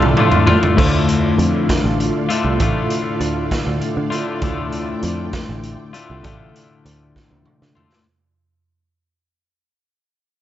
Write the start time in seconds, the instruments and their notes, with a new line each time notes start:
Already playing: picked electric bass C2, clean electric guitar A2 D3 A3 F4, string machine F4 A4 D5 F5
0.02 mid tom
0.17 clean electric guitar A2 D3 A3 F4, mid tom
0.32 floor tom
0.47 clean electric guitar D3 A3 F4, floor tom
0.63 floor tom
0.76 clean electric guitar D2 A2 D3 A3 F4, picked electric bass D2, string machine F4 A4 D5 F5, kick, crash
1.09 closed hi-hat
1.38 picked electric bass F2, closed hi-hat
1.69 kick, snare, closed hi-hat
1.84 picked electric bass A1
2.00 closed hi-hat
2.29 clean electric guitar D2 A2 D3 A3 F4, closed hi-hat
2.44 picked electric bass C2
2.59 picked electric bass A1, clean electric guitar D2 A2 D3 A3 F4, kick, closed hi-hat
2.90 closed hi-hat
3.21 picked electric bass D2, closed hi-hat
3.51 kick, snare, closed hi-hat
3.67 picked electric bass D2
3.82 closed hi-hat
3.97 picked electric bass D3
4.10 clean electric guitar D2 A2 D3 A3 F4, closed hi-hat
4.41 clean electric guitar D2 A2 D3 A3 F4, picked electric bass D2, string machine G5, kick, closed hi-hat
4.72 closed hi-hat
5.03 picked electric bass F2, closed hi-hat
5.33 kick, snare, closed hi-hat
5.49 picked electric bass A1
5.64 closed hi-hat
5.93 clean electric guitar D2 A2 D3 A3 F4, closed hi-hat
6.10 picked electric bass C2
6.23 picked electric bass A1, clean electric guitar D2 A2 D3 A3 F4, kick, closed hi-hat
6.56 closed hi-hat
6.85 picked electric bass D2, closed hi-hat
7.16 kick, snare
7.31 picked electric bass D2, high tom
7.46 mid tom
7.62 picked electric bass D3, snare
7.75 clean electric guitar D2 A2 D3 A3 F4, floor tom
7.93 snare